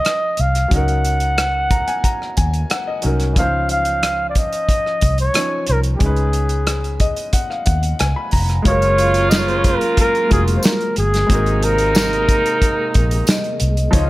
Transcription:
Already playing: F3 C#4 D#4 D#5
0.05 cross-stick, closed hi-hat
0.37 C2 F5, closed hi-hat
0.55 cross-stick, closed hi-hat
0.68 C#2 F#3 C#4, kick, closed hi-hat
0.73 D#4 A#4 F#5
0.88 closed hi-hat
1.05 closed hi-hat
1.20 closed hi-hat
1.38 cross-stick, closed hi-hat
1.71 A#5, kick, closed hi-hat
1.88 G#5, closed hi-hat
2.04 A#5, kick, closed hi-hat
2.22 cross-stick
2.37 D#2 G#5, kick, closed hi-hat
2.54 closed hi-hat
2.70 F#5, cross-stick, closed hi-hat
2.87 D#5
3.02 C2 F#3 C#4 D#4 A#4, closed hi-hat
3.20 cross-stick, closed hi-hat
3.33 C#2 E3 C#4, kick, closed hi-hat
3.38 F3 D#4 C5 F5
3.69 F5, closed hi-hat
3.85 closed hi-hat
4.03 cross-stick, closed hi-hat
4.30 D5
4.35 D#5, kick, closed hi-hat
4.53 closed hi-hat
4.69 kick, closed hi-hat
4.86 cross-stick
5.01 C2, kick, closed hi-hat
5.18 C#5, closed hi-hat
5.34 F3 C#4 D#4 C#5, cross-stick, closed hi-hat
5.67 C2 A#4, closed hi-hat
5.83 closed hi-hat
5.96 G#3 G4
6.00 C#2 C#4 D#4 G#4, kick, closed hi-hat
6.06 B4
6.16 closed hi-hat
6.33 closed hi-hat
6.49 closed hi-hat
6.67 cross-stick, closed hi-hat
6.84 closed hi-hat
7.00 D#5, kick, closed hi-hat
7.17 closed hi-hat
7.33 F#5, kick, closed hi-hat
7.50 F5, cross-stick
7.66 D#2 F#5, kick, closed hi-hat
7.83 closed hi-hat
7.99 C#2 G#5, cross-stick, closed hi-hat
8.16 B5
8.31 F1 A#5, kick, open hi-hat
8.49 cross-stick, closed hi-hat
8.62 F#1 C#3 G#3 A#3 F4 F5, kick, closed hi-hat
8.66 F#3 G#3 F#4 G#4 A#4 C#5
8.82 closed hi-hat
8.98 closed hi-hat
9.14 closed hi-hat
9.30 D#5, snare, closed hi-hat, tambourine
9.38 C#5
9.48 C5, closed hi-hat
9.56 C#5
9.64 A#4, kick, closed hi-hat
9.81 closed hi-hat
9.97 A#4, kick, closed hi-hat
10.15 closed hi-hat
10.29 F1 G#3 F4 F#4 G#4 A#4, kick, closed hi-hat
10.48 closed hi-hat
10.56 C5
10.63 A#4, snare, closed hi-hat, tambourine
10.81 closed hi-hat
10.96 G1 G#4, closed hi-hat
11.14 snare, closed hi-hat
11.27 G#1 C3 G#3 A#3 C4 D#4, kick, closed hi-hat
11.31 F#4 A#4
11.46 closed hi-hat
11.63 A#4, closed hi-hat
11.78 closed hi-hat
11.95 snare, closed hi-hat, tambourine
12.13 closed hi-hat
12.29 kick, closed hi-hat
12.46 closed hi-hat
12.62 kick, closed hi-hat
12.94 A#1, kick, closed hi-hat
13.11 closed hi-hat
13.27 D#5, snare, closed hi-hat, tambourine
13.44 closed hi-hat
13.60 C2, closed hi-hat
13.77 closed hi-hat
13.91 C#2 C3 D#3 F3 G#3 D#4 F4 C#5, kick, closed hi-hat
13.95 D#4 D#5

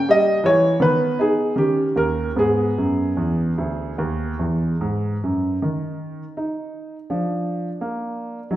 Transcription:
Already playing: A#3
0.09 G3 D#5
0.44 E3 C#5
0.80 D#3 B3 B4
1.19 D#4 G#4
1.56 D#3 C#4 G4
1.96 D#2 A#4
2.36 G#2 B3 G#4
2.78 F#2
3.17 E2
3.58 D2
3.98 D#2
4.39 E2
4.81 G#2
5.24 F#2
5.62 D#3 D#4
6.37 D#4
7.10 F3 D4
7.81 A#3
8.51 F#3 D#4

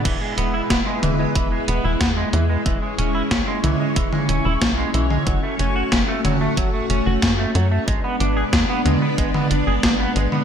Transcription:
0.05 E1 E3 G#3 B3 E4 B4, kick, closed hi-hat, crash
0.21 G#3
0.38 E1 B3, closed hi-hat
0.54 E4
0.70 E1 B3, kick, snare, closed hi-hat
0.87 G#3
1.03 E1 E3, closed hi-hat, mid tom
1.19 G#3
1.35 E1 E3, kick, closed hi-hat
1.52 G#3
1.68 E1 B3, closed hi-hat
1.84 E1 E4
2.01 E2 B3, kick, snare, closed hi-hat
2.17 G#3
2.33 E2 E3, closed hi-hat
2.50 G#3
2.66 E1 E3 C#4 E4 C#5, kick, closed hi-hat
2.82 G#3
2.98 E1 C#4, closed hi-hat
3.15 E4
3.31 C#2 C#4, kick, snare, closed hi-hat
3.47 G#3
3.64 C#2 E3, closed hi-hat, mid tom
3.80 G#3
3.96 E1 E3, kick, closed hi-hat
4.13 G#3, mid tom
4.29 E1 C#4, closed hi-hat
4.45 E1 E4
4.62 B1 C#4, kick, snare, closed hi-hat
4.78 G#3
4.94 B1 E3, closed hi-hat
5.10 G#3, mid tom
5.27 F#1 F#3 A3 F#4, kick, closed hi-hat
5.43 A3
5.59 F#1 C#4, closed hi-hat
5.76 F#4
5.92 F#1 C#4, kick, snare, closed hi-hat
6.08 A3
6.25 F#1 F#3, closed hi-hat, mid tom
6.41 A3
6.57 F#1 F#3, kick, closed hi-hat
6.74 A3
6.90 F#1 C#4, closed hi-hat
7.06 F#1 F#4
7.22 F#2 C#4, kick, snare, closed hi-hat
7.39 A3
7.55 F#2 F#3, closed hi-hat
7.71 A3
7.88 G#1 G#3 B3 D4 B4, kick, closed hi-hat
8.04 B3
8.20 G#1 D4, closed hi-hat
8.37 G#4
8.53 E2 D4, kick, snare, closed hi-hat
8.69 B3
8.86 E2 G#3, closed hi-hat, mid tom
9.02 B3
9.18 G#1 G#3, kick, closed hi-hat
9.34 B3, mid tom
9.51 G#1 D4, closed hi-hat
9.67 G#1 G#4
9.83 G#1 D4, kick, snare, closed hi-hat
10.00 B3
10.16 G#1 G#3, closed hi-hat
10.32 B3, mid tom

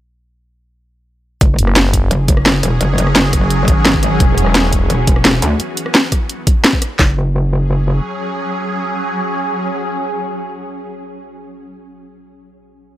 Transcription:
1.41 F#1 F#3 C#4 G#4, kick, closed hi-hat
1.59 F#1, closed hi-hat
1.67 cross-stick
1.76 snare, closed hi-hat
1.93 kick, closed hi-hat
2.11 F#1, closed hi-hat
2.28 kick, closed hi-hat
2.37 cross-stick
2.46 snare, closed hi-hat
2.54 cross-stick
2.63 E1, closed hi-hat
2.81 F#1, closed hi-hat
2.98 F#1, closed hi-hat
3.07 cross-stick
3.16 F#1, snare, closed hi-hat
3.33 kick, cross-stick, closed hi-hat
3.50 closed hi-hat
3.68 G#1, kick, closed hi-hat
3.85 snare, closed hi-hat
3.94 kick
4.03 cross-stick, closed hi-hat
4.20 E1 E3 B3 F#4, kick, closed hi-hat
4.38 E1, closed hi-hat
4.46 cross-stick
4.55 snare, closed hi-hat
4.72 kick, closed hi-hat
4.90 E1, closed hi-hat
5.07 kick, closed hi-hat
5.16 cross-stick
5.25 snare, closed hi-hat
5.34 cross-stick
5.42 D2, closed hi-hat
5.60 closed hi-hat
5.77 closed hi-hat
5.86 cross-stick
5.95 snare, closed hi-hat
6.12 kick, cross-stick, closed hi-hat
6.29 closed hi-hat
6.47 kick, closed hi-hat
6.64 snare, closed hi-hat
6.73 kick
6.82 cross-stick, closed hi-hat
6.99 F#1 F#3 C#4 G#4, kick, snare, clap

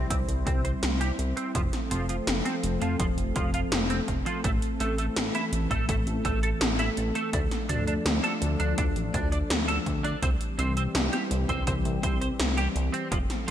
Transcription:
Already playing: G3 C4 E4 C5
0.10 C2 C4, kick, closed hi-hat
0.29 C2, closed hi-hat
0.47 C2 C4, kick, closed hi-hat
0.65 C5, closed hi-hat
0.83 C2, snare, closed hi-hat
1.01 G4, closed hi-hat
1.19 C2, closed hi-hat
1.37 C4, closed hi-hat
1.55 F1 F3 A3 A4, kick, closed hi-hat
1.73 snare, closed hi-hat
1.91 F1 F3, closed hi-hat
2.09 F3, closed hi-hat
2.27 F1, snare, closed hi-hat
2.45 C4, closed hi-hat
2.63 F1, closed hi-hat
2.82 F1 F3, closed hi-hat
3.00 F1 F3, kick, closed hi-hat
3.18 F1, closed hi-hat
3.36 F1 F3, kick, closed hi-hat
3.54 F4, closed hi-hat
3.72 F1, snare, closed hi-hat
3.90 C4, closed hi-hat
4.08 F1, kick, closed hi-hat
4.26 F3, closed hi-hat
4.44 A1 E3 A3, kick, closed hi-hat
4.62 closed hi-hat
4.80 A1 A3, closed hi-hat
4.98 A3, closed hi-hat
5.16 A1, snare, closed hi-hat
5.35 E4, closed hi-hat
5.53 A1, closed hi-hat
5.71 A1 A3, kick, closed hi-hat
5.89 A1 A3, kick, closed hi-hat
6.07 A1, closed hi-hat
6.25 A1 A3, kick, closed hi-hat
6.43 A4, closed hi-hat
6.61 A1, snare, closed hi-hat
6.79 E4, closed hi-hat
6.97 A1, closed hi-hat
7.15 A3, closed hi-hat
7.33 D2 F3 D4, kick, closed hi-hat
7.51 snare, closed hi-hat
7.69 D2 D4, closed hi-hat, mid tom
7.87 D4, closed hi-hat
8.06 D2, snare, closed hi-hat
8.24 A4, closed hi-hat
8.42 D2, closed hi-hat
8.60 D2 D4, closed hi-hat
8.78 D2 D4, kick, closed hi-hat
8.96 A1, closed hi-hat
9.14 D2 D4, kick, closed hi-hat
9.32 D5, closed hi-hat
9.50 D2, snare, closed hi-hat
9.68 A4, closed hi-hat
9.86 D2, kick, closed hi-hat
10.04 D4, closed hi-hat
10.22 C2 E3 G3 C4 G4, kick, closed hi-hat
10.41 closed hi-hat
10.59 C2 C4, closed hi-hat
10.77 C4, closed hi-hat
10.95 C2, snare, closed hi-hat
11.13 G4, closed hi-hat
11.31 C2, closed hi-hat
11.49 C2 C4, kick, closed hi-hat
11.67 C2 C4, kick, closed hi-hat
11.85 C2, closed hi-hat
12.03 C2 C4, kick, closed hi-hat
12.21 C5, closed hi-hat
12.40 C2, snare, closed hi-hat
12.57 G4, closed hi-hat
12.76 C2, closed hi-hat
12.93 C4, closed hi-hat
13.12 F1 F3 A3 C4 A4, kick, closed hi-hat
13.30 snare, closed hi-hat

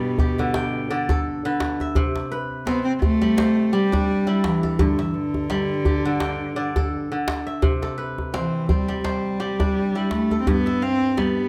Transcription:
Already playing: G2 B2 G3 A4 E5 F5
0.18 G4, djembe bass
0.38 D3, djembe tone
0.54 G5, djembe slap
0.90 D3 D5
1.09 A4, djembe slap, djembe tone, djembe bass
1.45 D3 B4, djembe slap
1.60 djembe slap
1.80 E5, djembe tone
1.95 C3, djembe bass
2.16 djembe slap
2.32 B4
2.66 B3 C4, djembe slap
2.85 C4
3.00 A3 C4, djembe bass
3.21 G3, djembe tone
3.37 C5, djembe slap
3.73 G3 G4
3.92 D4, djembe slap, djembe tone, djembe bass
4.27 G3 E4, djembe slap
4.44 E3, djembe slap
4.63 A4, djembe tone
4.79 G2 D3, djembe bass
4.99 E3 E5, djembe slap
5.15 D3
5.34 djembe slap, djembe tone
5.50 G3, djembe slap
5.85 G4, djembe bass
6.05 D3
6.20 G5, djembe slap
6.56 D3 D5
6.76 A4, djembe slap, djembe tone, djembe bass
7.12 D3
7.28 djembe slap
7.47 E5
7.62 C3, djembe bass
7.82 A4, djembe slap
7.98 B4
8.18 djembe tone
8.34 E3 C4, djembe slap
8.69 G3 C4, djembe bass
8.88 G3, djembe tone
9.04 G3 C5, djembe slap
9.40 G3 G4
9.60 D4, djembe slap, djembe tone, djembe bass
9.95 G3 E4, djembe slap
10.11 A3, djembe slap
10.31 A4, djembe tone
10.41 C4
10.47 G2 B3, djembe bass
10.66 E5, djembe slap
10.82 C4 F5
11.17 G3 B3, djembe slap

